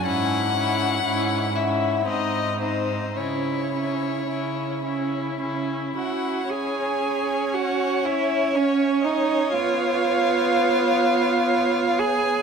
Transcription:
<<
  \new Staff \with { instrumentName = "Violin" } { \time 3/4 \key cis \minor \tempo 4 = 59 fis''4. e''8 dis''8 bis'8 | cis''2 r8 fis''8 | gis''4 fis''8 e''8 cis''8 dis''8 | eis''2~ eis''8 gis''8 | }
  \new Staff \with { instrumentName = "Violin" } { \time 3/4 \key cis \minor e'8 e'8 e'8 e'8 dis'8 dis'8 | e'8 e'8 e'8 e'8 e'8 e'8 | cis''2.~ | cis''2. | }
  \new Staff \with { instrumentName = "Cello" } { \time 3/4 \key cis \minor gis,4 gis,4 gis,4 | cis4 cis4 cis8 fis'8 | gis'4 fis'8 e'8 cis'8 dis'8 | eis'2~ eis'8 gis'8 | }
  \new Staff \with { instrumentName = "Viola" } { \time 3/4 \key cis \minor cis'8 cis'8 cis'8 cis'8 bis8 bis8 | cis'8 cis'8 cis'8 cis'8 cis'8 cis'8 | cis'2. | b2. | }
>>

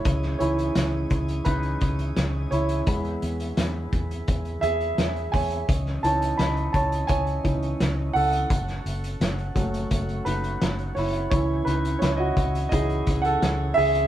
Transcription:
<<
  \new Staff \with { instrumentName = "Grand piano" } { \time 4/4 \key cis \minor \tempo 4 = 85 << { <e' cis''>8 <e' cis''>4. <dis' b'>4. <e' cis''>8~ | <e' cis''>2~ <e' cis''>8 <gis' e''>4 <cis'' gis''>8~ | <cis'' gis''>8 <cis'' a''>8 <dis'' b''>8 <cis'' a''>8 <cis'' gis''>4. <a' fis''>8~ | <a' fis''>4. r4 <dis' b'>4 <e' cis''>8 |
<e' cis''>8 <dis' b'>8 <e' cis''>16 <fis' dis''>8. <gis' dis''>8. <a' fis''>8. <gis' e''>8 | } \\ { r8 <e cis' dis'>8 r2. | <gis b e'>8 r2. r8 | r8 <e cis' dis'>2 <e cis' dis'>8 r4 | r4. <fis a cis'>2~ <fis a cis'>8 |
<e cis'>2 <e cis' dis'>8 r4. | } >> }
  \new Staff \with { instrumentName = "Tonewheel organ" } { \time 4/4 \key cis \minor cis'1 | r1 | cis'1~ | cis'1~ |
cis'1 | }
  \new Staff \with { instrumentName = "Tonewheel organ" } { \time 4/4 \key cis \minor <cis e gis' dis''>1 | <gis b>1 | <cis dis'>1 | <a fis'>1 |
<cis e gis''>1 | }
  \new Staff \with { instrumentName = "Fingered electric bass" } { \clef bass \time 4/4 \key cis \minor cis,8 cis,8 cis,8 cis,8 cis,8 cis,8 cis,8 cis,8 | e,8 e,8 e,8 e,8 e,8 e,8 e,8 e,8 | cis,8 cis,8 cis,8 cis,8 cis,8 cis,8 cis,8 cis,8 | fis,,8 fis,,8 fis,,8 fis,,8 fis,,8 fis,,8 fis,,8 fis,,8 |
cis,8 cis,8 cis,8 cis,8 cis,8 cis,8 cis,8 cis,8 | }
  \new DrumStaff \with { instrumentName = "Drums" } \drummode { \time 4/4 <hh bd>16 sn16 hh16 hh16 <hh sn>8 <hh bd>16 hh16 <hh bd>16 hh16 <hh bd>16 hh16 <hh sn>8 hh16 hh16 | <hh bd>16 hh16 hh16 hh16 <hh sn>8 <hh bd>16 hh16 <hh bd>16 hh16 hh16 hh16 <hh sn>16 hh16 <hho bd>16 hh16 | <hh bd>16 sn16 hh16 hh16 <hh sn>16 hh16 <hh bd>16 hh16 <hh bd>16 hh16 <hh bd>16 hh16 <hh sn>8 hho16 hh16 | <hh bd>16 <hh sn>16 hh16 hh16 <hh sn>16 hh16 <hh bd>16 hh16 <hh bd>16 hh16 hh16 hh16 <hh sn>16 hh16 hho16 hh16 |
<hh bd>8 hh16 hh16 <hh sn>8 <hh bd>16 hh16 <hh bd>16 hh16 <hh bd>16 hh16 <hh sn>8 hho16 hh16 | }
>>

